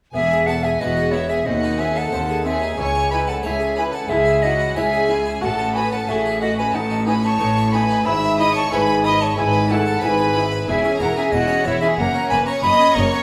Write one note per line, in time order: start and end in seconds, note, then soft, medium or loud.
0.13 0.73 E1 medium
0.13 0.73 E2 medium
0.13 0.71 E2 medium
0.13 0.22 B3 medium
0.13 0.45 G#4 medium
0.13 0.48 E5 medium
0.13 0.45 G#5 loud
0.32 0.49 G#4 soft
0.46 0.56 B3 soft
0.46 0.64 F#4 soft
0.46 0.64 A4 medium
0.46 0.65 F#5 medium
0.46 0.63 A5 medium
0.63 0.70 G#4 medium
0.63 0.82 G#4 soft
0.63 0.81 E5 medium
0.63 0.80 G#5 medium
0.79 1.39 E1 medium
0.79 1.39 E2 medium
0.79 1.37 E2 medium
0.79 0.87 B3 medium
0.79 1.13 F#4 medium
0.79 0.98 B4 medium
0.79 1.13 D#5 medium
0.79 1.14 F#5 medium
0.97 1.14 G#4 soft
1.12 1.20 B3 medium
1.12 1.31 B3 soft
1.12 1.30 E4 medium
1.12 1.31 C#5 medium
1.12 1.30 E5 medium
1.29 1.47 G#4 soft
1.29 1.47 G#4 medium
1.29 1.47 E5 medium
1.29 1.47 G#5 medium
1.46 2.05 D#2 medium
1.46 2.02 D#2 medium
1.46 1.54 C4 medium
1.46 1.80 F#4 medium
1.46 1.81 D#5 medium
1.46 1.79 F#5 medium
1.63 1.81 D#4 medium
1.79 1.87 C4 medium
1.79 1.96 C#4 soft
1.79 1.96 G#4 medium
1.79 1.99 E5 medium
1.79 1.96 G#5 medium
1.95 2.13 D#4 soft
1.95 2.45 A4 medium
1.95 2.45 F#5 medium
1.95 2.45 A5 medium
2.12 2.68 D#2 medium
2.12 2.71 D#2 medium
2.12 2.21 C4 medium
2.12 2.30 C5 medium
2.29 2.47 G#4 soft
2.45 2.63 C4 soft
2.45 2.54 C4 medium
2.45 2.78 G#4 medium
2.45 2.78 E5 medium
2.45 2.78 G#5 medium
2.62 2.79 D#4 soft
2.78 3.34 C#2 medium
2.78 3.37 C#2 medium
2.78 2.87 E4 medium
2.78 3.11 C#5 medium
2.78 3.11 G#5 medium
2.78 3.12 C#6 loud
2.95 3.13 E4 soft
3.11 3.28 D#4 soft
3.11 3.21 E4 medium
3.11 3.27 B4 medium
3.11 3.30 G#5 medium
3.11 3.18 B5 medium
3.27 3.45 E4 medium
3.27 3.45 A4 medium
3.27 3.45 F#5 medium
3.27 3.35 A5 medium
3.43 3.99 C#2 medium
3.43 4.03 C#2 medium
3.43 3.54 E4 medium
3.43 3.77 G#4 medium
3.43 3.61 C#5 medium
3.43 3.77 E5 medium
3.43 3.76 G#5 medium
3.60 3.78 G#4 soft
3.76 3.94 C#4 soft
3.76 3.87 E4 medium
3.76 3.94 B4 medium
3.76 3.84 G#5 medium
3.76 3.84 B5 medium
3.93 4.11 E4 soft
3.93 4.10 A4 medium
3.93 4.11 F#5 medium
3.93 4.10 A5 medium
4.08 4.65 C#2 medium
4.08 4.68 C#2 medium
4.08 4.69 C#2 medium
4.08 4.27 G#3 soft
4.08 4.19 E4 medium
4.08 4.43 G#4 medium
4.08 4.44 E5 medium
4.08 4.42 G#5 medium
4.26 4.44 E4 medium
4.42 4.59 D#4 soft
4.42 4.52 E4 medium
4.42 4.75 F#4 medium
4.42 4.75 D#5 medium
4.42 4.76 F#5 medium
4.59 4.77 E4 soft
4.75 5.34 C#2 medium
4.75 5.32 C#2 medium
4.75 5.35 C#2 medium
4.75 4.84 E4 medium
4.75 5.41 G#4 medium
4.75 4.94 C#5 medium
4.75 5.12 E5 medium
4.75 5.41 G#5 loud
4.93 5.10 G#4 soft
5.09 5.26 C#4 soft
5.09 5.17 E4 medium
5.25 5.42 E4 soft
5.40 6.00 A1 medium
5.40 6.00 A2 medium
5.40 5.98 A2 medium
5.40 5.49 F#4 medium
5.40 5.75 A4 medium
5.40 5.76 F#5 medium
5.40 5.74 A5 medium
5.59 5.76 C#4 medium
5.74 5.92 B3 soft
5.74 5.83 F#4 medium
5.74 5.92 B4 medium
5.74 5.91 G#5 medium
5.74 5.91 B5 medium
5.91 6.09 C#4 soft
5.91 6.08 A4 medium
5.91 6.10 F#5 medium
5.91 6.08 A5 medium
6.07 6.66 A1 medium
6.07 6.66 A2 medium
6.07 6.64 A2 medium
6.07 6.16 F#4 medium
6.07 6.42 G#4 medium
6.07 6.26 A4 soft
6.07 6.41 E5 medium
6.07 6.41 G#5 medium
6.26 6.42 F#4 soft
6.40 6.59 A3 soft
6.40 6.58 F#4 medium
6.40 6.50 F#4 medium
6.40 6.57 D#5 medium
6.40 6.47 F#5 medium
6.57 6.75 C#4 soft
6.57 6.65 B4 medium
6.57 6.76 G#5 medium
6.57 6.73 B5 medium
6.73 7.32 A1 medium
6.73 7.29 A2 medium
6.73 7.32 A2 medium
6.73 6.82 D#4 medium
6.73 7.06 A4 medium
6.73 7.07 F#5 medium
6.73 7.06 A5 medium
6.90 7.07 D#4 medium
7.06 7.23 C#4 soft
7.06 7.15 D#4 medium
7.06 7.23 B4 medium
7.06 7.14 G#5 medium
7.06 7.22 B5 medium
7.23 7.41 D#4 medium
7.23 7.72 C#5 medium
7.23 7.72 A5 medium
7.23 7.72 C#6 medium
7.39 7.98 A1 medium
7.39 7.95 A2 medium
7.39 7.98 A2 medium
7.39 7.48 D#4 medium
7.39 7.57 B4 medium
7.57 7.74 F#4 soft
7.71 7.90 B3 soft
7.71 7.82 D#4 medium
7.71 8.05 B4 medium
7.71 8.07 G#5 medium
7.71 8.04 B5 medium
7.89 8.05 D#4 medium
8.05 8.63 G#1 medium
8.05 8.61 G#2 medium
8.05 8.64 G#2 medium
8.05 8.15 E4 medium
8.05 8.39 E5 medium
8.05 8.38 B5 medium
8.05 8.37 E6 loud
8.23 8.39 E4 soft
8.38 8.55 D#4 medium
8.38 8.48 E4 medium
8.38 8.55 D#5 medium
8.38 8.54 B5 medium
8.38 8.54 D#6 loud
8.54 8.72 E4 medium
8.54 8.70 C#5 medium
8.54 8.71 A5 medium
8.54 8.71 C#6 loud
8.70 9.28 G#1 medium
8.70 9.29 G#2 medium
8.70 9.26 G#2 medium
8.70 8.80 E4 medium
8.70 8.89 B4 medium
8.70 9.05 B4 medium
8.70 9.06 G#5 medium
8.70 9.04 B5 loud
8.87 9.04 G#4 soft
9.04 9.21 B3 medium
9.04 9.13 E4 medium
9.04 9.20 D#5 medium
9.04 9.23 B5 loud
9.04 9.20 D#6 medium
9.20 9.37 E4 soft
9.20 9.37 C#5 medium
9.20 9.36 A5 medium
9.20 9.37 C#6 medium
9.36 9.94 G#1 medium
9.36 9.91 G#2 medium
9.36 9.94 G#2 medium
9.36 9.46 E4 medium
9.36 9.69 B4 medium
9.36 9.73 G#5 medium
9.36 9.69 B5 loud
9.53 9.70 B3 medium
9.69 9.86 A3 soft
9.69 9.79 E4 medium
9.69 10.02 A4 medium
9.69 10.03 F#5 medium
9.69 10.02 A5 loud
9.86 10.03 E4 medium
10.01 10.60 G#1 medium
10.01 10.57 G#2 medium
10.01 10.60 G#2 medium
10.01 10.12 E4 medium
10.01 10.19 B4 medium
10.01 10.67 B4 medium
10.01 10.45 G#5 medium
10.01 10.67 B5 loud
10.18 10.35 G#4 medium
10.35 10.52 B3 soft
10.35 10.43 E4 medium
10.51 10.68 E4 medium
10.67 10.76 E1 medium
10.67 10.97 E2 medium
10.67 10.76 E2 medium
10.67 10.83 E4 medium
10.67 11.01 G#4 medium
10.67 10.99 E5 medium
10.67 10.99 G#5 medium
10.84 11.00 C#4 medium
10.84 11.01 G#4 medium
10.99 11.08 E1 medium
10.99 11.29 E2 medium
10.99 11.09 E2 medium
10.99 11.17 E4 medium
10.99 11.16 F#4 medium
10.99 11.16 A#4 medium
10.99 11.17 F#5 medium
10.99 11.16 A#5 loud
11.16 11.33 C#4 medium
11.16 11.34 G#4 medium
11.16 11.33 G#4 medium
11.16 11.33 E5 medium
11.16 11.33 G#5 medium
11.32 11.41 E1 medium
11.32 11.62 E2 medium
11.32 11.41 E2 medium
11.32 11.48 E4 medium
11.32 11.65 F#4 medium
11.32 11.67 D#5 medium
11.32 11.50 E5 medium
11.32 11.65 F#5 loud
11.48 11.65 C#4 medium
11.48 11.66 C#5 medium
11.63 11.74 E1 medium
11.63 11.94 E2 medium
11.63 11.74 E2 medium
11.63 11.82 E4 medium
11.63 11.79 C#5 medium
11.63 11.82 E5 medium
11.68 11.83 E4 medium
11.80 11.98 C#4 medium
11.80 11.98 G#4 medium
11.80 11.99 G#4 medium
11.80 11.96 E5 medium
11.80 11.88 G#5 medium
11.97 12.06 F#1 medium
11.97 12.27 F#2 medium
11.97 12.06 F#2 medium
11.97 12.13 A#3 medium
11.97 12.32 A#4 medium
11.97 12.28 F#5 medium
11.97 12.30 A#5 loud
12.14 12.31 C#4 medium
12.14 12.32 F#4 medium
12.29 12.39 F#1 medium
12.29 12.61 F#2 medium
12.29 12.39 F#2 medium
12.29 12.47 A#3 medium
12.29 12.47 E4 soft
12.29 12.48 B4 medium
12.29 12.45 G#5 loud
12.29 12.36 B5 loud
12.46 12.64 C#4 medium
12.46 12.64 F#4 medium
12.46 12.64 C#5 medium
12.46 12.52 A#5 medium
12.46 12.63 C#6 medium
12.62 12.72 F#1 medium
12.62 12.93 F#2 medium
12.62 12.72 F#2 medium
12.62 12.79 A#3 medium
12.62 12.81 C#5 medium
12.62 12.96 D#5 loud
12.62 12.96 B5 loud
12.62 12.95 D#6 loud
12.81 12.97 C#4 medium
12.81 12.98 F#4 medium
12.95 13.05 F#1 medium
12.95 13.23 F#2 medium
12.95 13.04 F#2 medium
12.95 13.13 A#3 medium
12.95 13.14 C#4 soft
12.95 13.23 C#5 loud
12.95 13.23 A#5 medium
12.95 13.23 C#6 loud
13.12 13.23 C#4 medium
13.12 13.23 F#4 medium